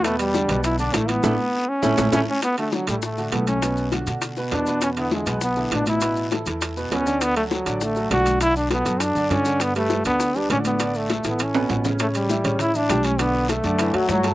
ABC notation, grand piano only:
X:1
M:4/4
L:1/8
Q:1/4=201
K:Amix
V:1 name="Grand piano"
[B,,B,B]2 [D,Dd] [B,,B,B]2 [D,Dd] [E,Ee]2 | [A,DE] z3 [A,CE] [A,CE] [A,CE] z | z [D,DF]2 [A,,A,A]2 [D,DF] [A,,A,A]2 | [B,,B,B]2 [D,DF] [D,DF]2 [B,,B,B] [B,,B,B] [B,,B,B]- |
[B,,B,B] [D,DE]2 [B,,B,B]2 [D,DE] [B,,B,B]2 | [B,,B,B]2 [E,EA] [E,EA]2 [B,,B,B] [B,,B,B] [D,Dd]- | [D,Dd] [F,FA]2 [D,Dd]2 [F,FA] [D,Dd]2 | [D,Dd]2 [F,FA] [F,FA]2 [D,Dd] [D,Dd] [D,Dd]- |
[D,Dd] [G,GB]2 [D,Dd]2 [G,GB] [D,Dd]2 | [D,Dd]2 [A,A] [E,EA]2 [B,,B,B] [B,,B,B] [C,Cc] | [C,Cc]2 [E,Ee] [C,Cc]2 [E,Ee] [G,Gg]2 | [D,Dd]2 [A,Aa] [D,Dd]2 [F,Ff]2 [A,Aa] |]